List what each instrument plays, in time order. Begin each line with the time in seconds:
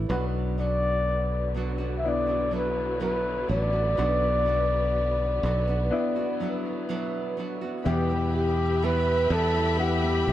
Already playing: upright piano A3 D4 E4, nylon-string guitar E4
0.09 fingered electric bass B1, nylon-string guitar B2 F#3 B3 D4 F#4, string section D3 F#3 B3, upright piano B3 D4 F#4, flugelhorn B4
0.58 nylon-string guitar F#3 B3 D4 F#4, flugelhorn D5
1.54 nylon-string guitar F#3 B3 D4 F#4
1.78 nylon-string guitar B3 D4 F#4
1.99 flugelhorn E5
2.04 upright piano B3 D4 E4
2.08 flugelhorn D5
2.27 nylon-string guitar B3 D4 F#4
2.51 nylon-string guitar F#3 B3 D4 F#4
2.55 flugelhorn B4
3.00 nylon-string guitar B2 F#3 B3 D4 F#4, flugelhorn B4
3.48 fingered electric bass A1, nylon-string guitar F#3 B3 D4 F#4, flugelhorn D5
3.73 nylon-string guitar B3 D4 F#4
3.97 fingered electric bass B1, nylon-string guitar B2 F#3 B3 D4 F#4, upright piano B3 D4 F#4
4.46 nylon-string guitar F#3 B3 D4 F#4
5.43 fingered electric bass B1, nylon-string guitar F#3 B3 D4 F#4
5.67 nylon-string guitar B3 D4 F#4
5.91 upright piano B3 D4 E4
6.16 nylon-string guitar B3 D4 F#4
6.40 nylon-string guitar F#3 B3 D4 F#4
6.89 nylon-string guitar B2 F#3 B3 D4 F#4
7.37 nylon-string guitar F#3 B3 D4 F#4
7.61 nylon-string guitar B3 D4 F#4
7.84 nylon-string guitar E2 B2 E3 G3 B3 G4, fingered electric bass E2, upright piano B2 B3 E4 G4, string section G4 B4 E5 B5
7.88 flugelhorn G4
8.10 nylon-string guitar E3 G3 B3 G4
8.36 flugelhorn G4
8.82 nylon-string guitar E2 B2 E3 G3 B3 G4, flugelhorn B4
9.30 fingered electric bass E2, nylon-string guitar E3 G3 B3 G4, flugelhorn A4
9.54 nylon-string guitar E3 G3 B3 G4
9.78 upright piano B3 E4 F#5, flugelhorn G4
10.03 nylon-string guitar E3 G3 B3 G4
10.27 fingered electric bass B1, nylon-string guitar E3 G3 B3